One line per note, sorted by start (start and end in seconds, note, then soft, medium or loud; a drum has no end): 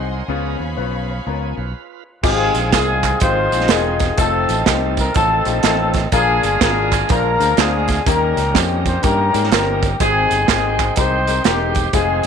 0.00 0.21 C2 medium
0.00 0.24 F#3 medium
0.00 0.11 C4 medium
0.00 0.24 C4 medium
0.00 0.11 D#4 medium
0.00 0.24 D#4 medium
0.00 0.11 F#4 medium
0.00 0.11 G#4 medium
0.00 0.25 D#5 medium
0.00 0.26 F#5 medium
0.00 1.71 G#5 medium
0.00 0.26 C6 medium
0.11 0.57 A#4 soft
0.11 0.57 D#5 medium
0.28 0.54 C#2 medium
0.28 1.04 C#3 medium
0.28 1.73 F3 medium
0.28 0.60 B3 loud
0.28 1.72 B3 medium
0.28 0.60 C#4 medium
0.28 1.73 C#4 medium
0.28 0.60 F4 medium
0.28 0.60 G#4 medium
0.28 1.25 G#4 medium
0.28 1.73 C#5 medium
0.28 1.73 F5 medium
0.28 1.73 B5 medium
0.59 0.74 D#2 medium
0.77 1.19 B1 medium
0.77 1.09 B3 medium
0.77 1.09 C#4 medium
0.77 1.09 F4 medium
0.77 1.09 B4 medium
1.26 1.53 C#2 medium
1.26 1.58 B3 medium
1.26 1.58 C#4 medium
1.26 1.55 D#4 soft
1.26 1.58 F4 medium
1.26 1.55 G#4 medium
1.26 1.58 A#4 medium
1.57 1.72 B1 medium
1.57 2.04 F4 soft
1.57 2.03 B4 medium
2.23 2.50 G#1 medium
2.23 2.99 G#2 medium
2.23 4.14 F3 medium
2.23 2.55 G#3 medium
2.23 4.14 G#3 medium
2.23 2.55 C4 medium
2.23 4.14 C4 medium
2.23 2.72 C4 medium
2.23 4.14 D#4 medium
2.23 2.55 D#4 medium
2.23 2.55 F4 medium
2.23 2.72 F4 medium
2.23 2.69 G#4 medium
2.23 4.14 G#4 medium
2.23 2.55 G#4 loud
2.23 kick loud
2.23 crash loud
2.23 tambourine medium
2.54 2.72 A#1 medium
2.54 closed hi-hat medium
2.54 tambourine medium
2.72 3.14 C2 medium
2.72 3.04 G#3 medium
2.72 3.04 C4 medium
2.72 3.66 C4 medium
2.72 3.04 D#4 medium
2.72 3.04 F4 medium
2.72 3.21 F4 medium
2.72 3.18 G#4 medium
2.72 3.04 G#4 medium
2.72 kick medium
2.72 snare loud
2.72 clap loud
2.72 closed hi-hat medium
2.72 tambourine loud
3.03 kick medium
3.03 clap medium
3.03 closed hi-hat medium
3.03 tambourine medium
3.20 3.47 G#1 loud
3.20 3.37 G#3 medium
3.20 3.37 C4 medium
3.20 3.37 D#4 medium
3.20 4.15 D#4 medium
3.20 3.37 F4 medium
3.20 3.69 F4 medium
3.20 3.37 G4 medium
3.20 3.70 C5 loud
3.20 kick loud
3.20 closed hi-hat medium
3.20 tambourine medium
3.51 3.67 A#1 medium
3.51 3.61 G#3 medium
3.51 3.61 C4 medium
3.51 3.61 D#4 medium
3.51 3.61 F4 medium
3.51 3.62 G#4 medium
3.51 closed hi-hat medium
3.51 tambourine medium
3.60 snare soft
3.68 4.11 E1 loud
3.68 4.01 G#3 medium
3.68 4.01 C4 medium
3.68 4.15 C4 medium
3.68 4.01 D#4 medium
3.68 4.01 F4 medium
3.68 4.15 F4 medium
3.68 4.01 G#4 medium
3.68 4.18 G#4 medium
3.68 snare loud
3.68 clap medium
3.68 closed hi-hat medium
3.68 tambourine medium
4.00 kick medium
4.00 snare soft
4.00 closed hi-hat medium
4.00 tambourine medium
4.17 4.44 F1 loud
4.17 6.09 F3 medium
4.17 4.49 A3 loud
4.17 6.09 A3 medium
4.17 4.49 C4 medium
4.17 5.12 C4 medium
4.17 6.09 C4 medium
4.17 4.49 D#4 medium
4.17 6.09 D#4 medium
4.17 5.12 D#4 medium
4.17 4.50 F4 medium
4.17 4.50 A4 loud
4.17 4.67 A4 medium
4.17 6.09 A4 medium
4.17 kick loud
4.17 closed hi-hat loud
4.17 tambourine medium
4.49 4.64 A1 medium
4.49 closed hi-hat medium
4.49 tambourine medium
4.66 5.08 C2 medium
4.66 4.98 A3 medium
4.66 4.98 C4 medium
4.66 4.98 D#4 medium
4.66 4.98 F4 medium
4.66 4.98 G4 medium
4.66 kick medium
4.66 snare loud
4.66 clap loud
4.66 closed hi-hat medium
4.66 tambourine loud
4.97 5.15 A#4 loud
4.97 kick medium
4.97 closed hi-hat medium
4.97 tambourine medium
5.14 5.42 A1 loud
5.14 5.31 A3 medium
5.14 5.31 C4 medium
5.14 5.63 C4 medium
5.14 5.31 D#4 medium
5.14 5.63 D#4 medium
5.14 5.32 F4 medium
5.14 5.31 A4 medium
5.14 5.45 A4 loud
5.14 kick loud
5.14 closed hi-hat medium
5.14 tambourine medium
5.45 5.61 A#1 medium
5.45 5.55 A3 medium
5.45 5.55 C4 medium
5.45 5.55 D#4 medium
5.45 5.55 F4 medium
5.45 5.55 G4 medium
5.45 5.63 A4 medium
5.45 closed hi-hat medium
5.45 tambourine medium
5.63 6.05 A1 medium
5.63 5.95 A3 medium
5.63 5.95 C4 medium
5.63 6.09 C4 medium
5.63 5.95 D#4 medium
5.63 6.09 D#4 medium
5.63 5.95 F4 medium
5.63 5.96 A4 medium
5.63 6.01 A4 loud
5.63 snare loud
5.63 clap medium
5.63 closed hi-hat medium
5.63 tambourine loud
5.94 kick medium
5.94 snare soft
5.94 closed hi-hat medium
5.94 tambourine medium
6.12 6.38 A#1 loud
6.12 6.88 A#2 medium
6.12 8.03 G#3 medium
6.12 8.02 A#3 medium
6.12 6.44 A#3 medium
6.12 8.02 D4 medium
6.12 6.61 D4 medium
6.12 6.44 D4 medium
6.12 8.03 F4 medium
6.12 6.61 F4 medium
6.12 6.44 F4 medium
6.12 6.44 G#4 medium
6.12 6.58 G#4 loud
6.12 8.02 A#4 medium
6.12 6.44 A#4 loud
6.12 kick loud
6.12 closed hi-hat loud
6.12 tambourine medium
6.43 6.58 G1 medium
6.43 closed hi-hat medium
6.43 tambourine medium
6.61 7.02 G#1 loud
6.61 6.93 A#3 medium
6.61 6.93 D4 medium
6.61 7.11 D4 medium
6.61 6.93 F4 medium
6.61 7.11 F4 medium
6.61 6.93 G#4 medium
6.61 7.07 G#4 loud
6.61 6.93 A#4 medium
6.61 kick medium
6.61 snare loud
6.61 clap loud
6.61 closed hi-hat medium
6.61 tambourine loud
6.92 kick medium
6.92 clap medium
6.92 closed hi-hat medium
6.92 tambourine medium
7.09 7.36 A#1 loud
7.09 7.26 A#3 medium
7.09 7.26 D4 medium
7.09 7.58 D4 medium
7.09 7.25 F4 medium
7.09 7.58 F4 medium
7.09 7.26 G#4 medium
7.09 7.59 A#4 loud
7.09 7.26 C5 medium
7.09 kick loud
7.09 closed hi-hat medium
7.09 tambourine medium
7.39 7.55 D2 medium
7.39 7.49 A#3 medium
7.39 7.49 D4 medium
7.39 7.49 F4 medium
7.39 7.49 G#4 medium
7.39 7.49 C5 medium
7.39 closed hi-hat medium
7.39 tambourine medium
7.57 7.99 D2 loud
7.57 7.89 A#3 medium
7.57 7.89 D4 medium
7.57 8.04 D4 medium
7.57 7.89 F4 medium
7.57 8.04 F4 medium
7.57 7.90 G#4 medium
7.57 8.07 G#4 medium
7.57 7.90 C5 medium
7.57 snare loud
7.57 clap loud
7.57 closed hi-hat medium
7.57 tambourine loud
7.88 kick medium
7.88 snare soft
7.88 closed hi-hat medium
7.88 tambourine medium
8.06 8.33 D#2 loud
8.06 8.82 D#3 medium
8.06 9.97 G3 medium
8.06 8.38 A#3 loud
8.06 9.97 A#3 medium
8.06 9.96 C#4 medium
8.06 8.38 C#4 medium
8.06 9.00 C#4 medium
8.06 9.97 D#4 medium
8.06 8.38 D#4 medium
8.06 8.38 G4 loud
8.06 9.00 G4 medium
8.06 8.14 A4 medium
8.06 8.55 A#4 loud
8.06 8.38 A#4 loud
8.06 kick loud
8.06 closed hi-hat loud
8.06 tambourine medium
8.12 9.99 A#4 medium
8.37 8.52 C#2 medium
8.37 closed hi-hat medium
8.37 tambourine medium
8.54 8.96 F2 medium
8.54 8.86 A#3 medium
8.54 8.86 C#4 medium
8.54 8.86 D#4 medium
8.54 8.86 G4 medium
8.54 8.86 C5 medium
8.54 kick medium
8.54 snare loud
8.54 clap loud
8.54 closed hi-hat medium
8.54 tambourine loud
8.86 9.03 C5 medium
8.86 kick medium
8.86 closed hi-hat medium
8.86 tambourine medium
9.02 9.30 G2 medium
9.02 9.19 A#3 medium
9.02 9.19 C#4 medium
9.02 9.51 C#4 medium
9.02 9.19 D#4 medium
9.02 9.19 G4 medium
9.02 9.51 G4 medium
9.02 9.19 A#4 medium
9.02 9.50 A#4 loud
9.02 kick loud
9.02 closed hi-hat medium
9.02 tambourine medium
9.33 9.49 G#2 medium
9.33 9.43 A#3 medium
9.33 9.43 C#4 medium
9.33 9.43 D#4 medium
9.33 9.43 G4 medium
9.33 9.43 A#4 medium
9.33 closed hi-hat medium
9.33 tambourine medium
9.44 snare soft
9.51 9.93 G1 loud
9.51 9.83 A#3 medium
9.51 9.83 C#4 medium
9.51 9.97 C#4 medium
9.51 9.83 D#4 medium
9.51 9.83 G4 medium
9.51 9.97 G4 medium
9.51 9.88 A#4 medium
9.51 9.83 C5 medium
9.51 snare loud
9.51 clap loud
9.51 closed hi-hat medium
9.51 tambourine loud
9.83 kick medium
9.83 closed hi-hat medium
9.83 tambourine medium
9.99 10.26 G#1 loud
9.99 10.75 G#2 medium
9.99 10.32 G#3 loud
9.99 11.90 G#3 medium
9.99 11.90 C4 medium
9.99 10.32 C4 medium
9.99 10.47 C4 medium
9.99 11.90 D#4 medium
9.99 10.32 D#4 medium
9.99 10.48 D#4 medium
9.99 10.32 G4 medium
9.99 10.32 G#4 loud
9.99 10.46 G#4 loud
9.99 10.08 B4 medium
9.99 11.90 G5 medium
9.99 kick loud
9.99 closed hi-hat loud
9.99 tambourine medium
10.06 11.92 C5 medium
10.31 10.46 G1 medium
10.31 closed hi-hat medium
10.31 tambourine medium
10.48 10.90 G#1 medium
10.48 10.80 G#3 medium
10.48 10.80 C4 medium
10.48 11.41 C4 medium
10.48 10.80 D#4 medium
10.48 10.96 D#4 medium
10.48 10.80 G4 medium
10.48 10.94 G#4 loud
10.48 10.80 G#4 medium
10.48 kick medium
10.48 snare loud
10.48 clap loud
10.48 closed hi-hat medium
10.48 tambourine loud
10.79 kick medium
10.79 clap medium
10.79 closed hi-hat medium
10.79 tambourine medium
10.96 11.38 C2 medium
10.96 11.13 G#3 medium
10.96 11.13 C4 medium
10.96 11.44 D#4 medium
10.96 11.13 D#4 medium
10.96 11.44 G4 medium
10.96 11.13 G4 medium
10.96 11.13 A#4 medium
10.96 11.45 C5 loud
10.96 kick loud
10.96 closed hi-hat medium
10.96 tambourine medium
11.27 11.37 G#3 medium
11.27 11.37 C4 medium
11.27 11.37 D#4 medium
11.27 11.37 G4 medium
11.27 11.37 A#4 medium
11.27 closed hi-hat medium
11.27 tambourine medium
11.44 11.87 E1 loud
11.44 11.76 G#3 medium
11.44 11.76 C4 medium
11.44 11.90 C4 medium
11.44 11.76 D#4 medium
11.44 11.90 D#4 medium
11.44 11.76 G4 medium
11.44 11.90 G4 medium
11.44 11.77 A#4 medium
11.44 snare loud
11.44 clap loud
11.44 closed hi-hat loud
11.44 tambourine loud
11.75 kick medium
11.75 closed hi-hat medium
11.75 tambourine medium
11.93 12.20 F1 loud
11.93 12.25 G#3 loud
11.93 12.27 G#3 medium
11.93 12.27 C4 medium
11.93 12.25 C4 medium
11.93 12.27 C4 medium
11.93 12.27 D#4 medium
11.93 12.25 D#4 medium
11.93 12.27 D#4 medium
11.93 12.27 F4 medium
11.93 12.25 F4 medium
11.93 12.25 G#4 loud
11.93 12.27 G#4 medium
11.93 12.27 C5 medium
11.93 kick loud
11.93 closed hi-hat loud
11.93 tambourine loud
12.23 closed hi-hat medium